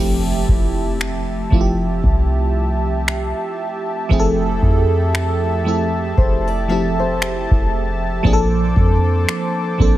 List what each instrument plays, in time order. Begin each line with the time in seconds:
Already playing: 808-style bass F1, fm electric piano F3 A3 C4, analog synth pad G4 E5 A5, steel-string acoustic guitar A4, impact
0.00 fm electric piano E4 G4
0.49 808-style bass F1, kick
1.01 finger snap
1.50 808-style bass F1, fm electric piano F3 A3 C4 E4 F4, kick
1.61 fm electric piano G4
2.04 808-style bass C2, kick
3.08 finger snap
4.09 808-style bass F1, fm electric piano F3 A3 C4 E4 G#4, kick
4.20 fm electric piano A4
4.62 808-style bass F2, kick
5.15 finger snap
5.64 fm electric piano F3 A3 C4 E4 A4
6.18 808-style bass F1, steel-string acoustic guitar C5, kick
6.48 steel-string acoustic guitar D5
6.68 fm electric piano F3 A3 C4 E4 G4, steel-string acoustic guitar E5
7.00 steel-string acoustic guitar C5
7.22 finger snap
7.51 808-style bass F1, kick
8.23 808-style bass A#1, fm electric piano F3 A#3 C4 D4 G#4, analog synth pad C5 D6, kick
8.33 fm electric piano A4
8.76 808-style bass F2, kick
9.29 finger snap
9.78 808-style bass A#1, fm electric piano F3 A#3 C4 D4 A4, kick